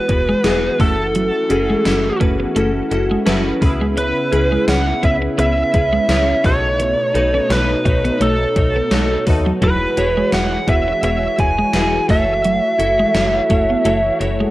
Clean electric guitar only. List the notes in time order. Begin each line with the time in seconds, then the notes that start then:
0.29 G#3
0.80 A3
1.15 F#3
1.51 muted clean electric guitar stroke
1.70 G#3
1.85 muted clean electric guitar stroke
2.20 A3
2.40 B3
2.56 A3
2.91 muted clean electric guitar stroke
3.11 G#3
3.27 F#3
3.62 muted clean electric guitar stroke
3.81 G#3
3.97 C#4
4.32 muted clean electric guitar stroke
4.52 G#3
4.68 muted clean electric guitar stroke
5.03 B3
5.22 C#4
5.38 B3
5.58 muted clean electric guitar stroke
5.93 G#3
6.44 D#4
6.80 B3
7.15 muted clean electric guitar stroke
7.34 C#4
7.50 muted clean electric guitar stroke
7.85 D#4
8.05 B3
8.21 A3
8.57 muted clean electric guitar stroke
8.76 B3
8.92 G#3
9.27 muted clean electric guitar stroke
9.46 F#3
9.62 F#3
9.98 muted clean electric guitar stroke
10.17 G#3
10.33 muted clean electric guitar stroke
10.69 B3
10.88 C#4
11.04 B3
11.23 muted clean electric guitar stroke
11.59 G#3
12.10 A3
12.45 F#3
12.80 muted clean electric guitar stroke
12.99 G#3
13.15 muted clean electric guitar stroke
13.51 A3
13.70 B3
13.86 A3
14.21 muted clean electric guitar stroke
14.40 G#3